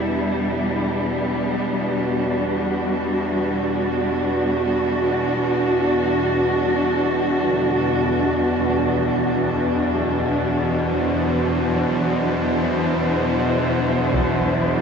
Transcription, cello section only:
0.00 8.70 G3 medium
0.00 8.68 B3 medium
0.00 14.81 D4 medium
0.00 2.02 E4 medium
1.74 12.25 F#4 medium
8.70 14.81 E2 medium
9.70 14.81 F#3 medium
10.79 14.81 C5 medium
12.40 14.81 E4 medium

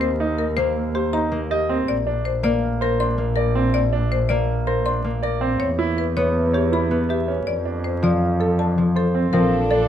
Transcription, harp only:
0.00 0.56 A#3 medium
0.57 1.30 A#3 medium
1.32 2.42 A#3 medium
2.43 3.17 A#3 medium
3.18 4.29 A#3 medium
4.30 5.03 A#3 medium
5.04 5.62 A#3 medium
6.16 6.90 B3 medium
6.91 7.48 B3 medium
8.02 8.77 F3 medium
8.78 9.32 F3 soft
9.33 9.88 F3 medium

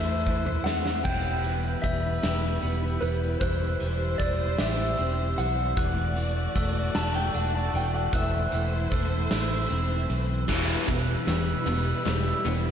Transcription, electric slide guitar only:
0.00 0.64 E5 medium
0.64 1.02 F#5 medium
1.04 1.86 G5 medium
1.82 2.58 E5 medium
3.01 3.40 B4 medium
3.40 4.22 C5 medium
4.18 4.59 D5 medium
4.58 5.38 E5 medium
5.38 6.91 F#5 medium
6.96 7.15 A5 medium
7.15 7.35 G5 medium
7.35 7.55 F#5 medium
7.55 7.75 A5 medium
7.76 7.94 G5 medium
7.95 8.12 F#5 medium
8.15 10.10 E5 medium

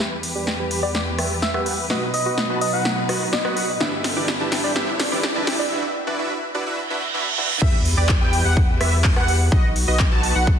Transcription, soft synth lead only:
0.83 0.91 D5 medium
0.95 1.02 D5 medium
1.42 1.50 E5 medium
1.54 1.62 E5 medium
2.14 2.59 D#5 medium
2.61 2.71 D#5 medium
2.73 3.09 F#5 medium
3.33 3.81 D#5 loud
4.64 4.72 D5 medium
5.59 5.67 D5 medium

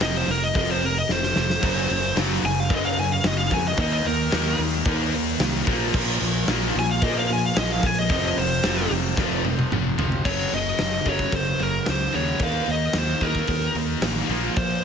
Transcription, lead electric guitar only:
0.02 0.17 D#5 medium
0.17 0.29 C5 loud
0.31 0.43 A#4 medium
0.44 0.55 D#5 medium
0.57 0.69 D#5 medium
0.71 0.83 C5 medium
0.85 0.97 A#4 medium
0.98 1.10 D#5 medium
1.12 2.15 C5 loud
2.45 2.60 G#5 medium
2.60 2.72 F5 medium
2.75 2.85 D#5 medium
2.85 2.98 F5 medium
2.99 3.12 G#5 medium
3.12 3.27 F5 loud
3.27 3.38 D#5 loud
3.38 3.51 F5 medium
3.54 3.66 G#5 medium
3.68 3.80 D#5 medium
3.81 3.91 D#5 medium
3.93 4.06 D#5 loud
4.06 4.58 A#4 loud
6.79 6.90 G#5 medium
6.91 7.03 F5 medium
7.03 7.16 D#5 medium
7.18 7.30 F5 medium
7.33 7.44 G#5 medium
7.45 7.57 F5 loud
7.58 7.70 D#5 loud
7.72 7.86 F5 medium
7.86 7.98 G#5 medium
7.99 8.11 D#5 loud
8.12 8.24 D#5 loud
8.25 8.38 D#5 loud
8.39 8.90 C5 loud
10.26 10.51 C#5 medium
10.55 11.09 D#5 medium
11.09 11.35 C#5 medium
11.36 11.62 C5 medium
11.63 11.89 A#4 medium
11.90 12.15 C5 medium
12.15 12.43 C#5 medium
12.43 12.70 F5 loud
12.71 12.98 D#5 medium
12.99 13.25 C5 loud
13.23 13.73 A#4 medium
14.58 14.83 C5 loud

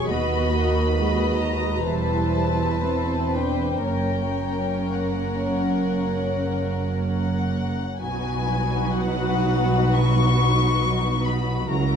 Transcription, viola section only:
0.09 0.53 B3 soft
0.09 1.87 F#4 soft
0.53 0.96 A#3 soft
0.96 1.87 G#3 soft
1.87 2.84 G3 soft
1.87 2.82 E4 soft
2.83 3.86 C4 soft
2.83 3.33 E4 soft
3.34 3.87 D4 soft
3.86 7.78 A#3 soft
3.86 7.81 C#4 soft
8.02 11.66 F#3 soft
8.02 11.66 D#4 soft
11.69 11.96 F#3 soft
11.69 11.96 E4 medium

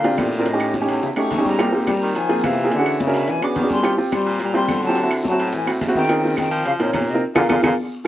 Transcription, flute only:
0.00 0.19 F5 medium
0.18 0.48 D5 medium
0.47 0.77 D#5 medium
0.75 1.03 C#5 medium
1.04 1.10 E5 loud
1.18 1.44 C#6 loud
1.47 1.72 A#5 loud
1.89 2.17 A#5 medium
2.16 2.46 G#5 loud
2.45 2.72 F5 medium
2.73 2.99 F#5 loud
3.02 3.31 E5 loud
3.29 3.45 G#5 loud
3.43 3.71 D6 medium
3.71 3.94 C6 loud
4.13 4.39 C6 medium
4.42 4.54 A#5 loud
4.56 4.82 C6 medium
4.85 5.10 A5 medium
5.28 5.52 A5 loud
5.56 5.67 G#5 medium
5.97 6.35 G5 loud
6.39 6.64 G5 loud
6.67 6.73 F5 loud
6.81 7.11 C#5 medium
7.09 7.23 D#5 medium
7.38 7.46 F5 medium
7.51 7.60 F5 medium
7.65 7.73 F5 medium

